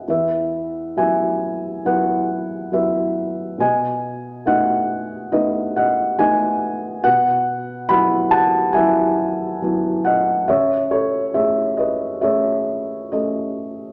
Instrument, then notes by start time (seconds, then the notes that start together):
felt piano
0.08 E2 B4 E5
0.97 F#3 B3 E4 E5 G#5
1.85 F#3 B3 E4 B4 F#5
2.72 F#3 B3 E4 B4 E5
3.58 B2 D#5 G#5
4.45 A3 B3 D#4 D#5 F#5
5.32 A3 B3 D#4 B4 D#5
5.76 D#5 F#5
6.19 A3 B3 D#4 D#5 G#5
7.04 B2 B4 F#5
7.89 F#3 B3 E4 F#5 B5
8.31 F#5 A5
8.73 F#3 B3 E4 E5 G#5
9.62 F#3 B3 E4
10.05 D#5 F#5
10.48 C#3 C#5 E5
10.91 A4 C#5
11.34 A3 C#4 G#4 C#5 E5
11.77 B4 D#5
12.21 A3 C#4 G#4 C#5 E5
13.12 A3 C#4 A4 D#5